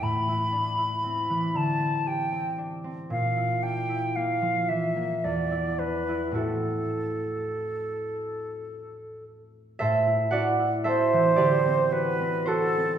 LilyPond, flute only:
\new Staff \with { instrumentName = "Flute" } { \time 3/4 \key a \minor \tempo 4 = 56 b''4. a''8 g''8 r8 | f''8 g''8 f''8 e''8 d''8 b'8 | a'2~ a'8 r8 | r4 c''4 b'8 a'8 | }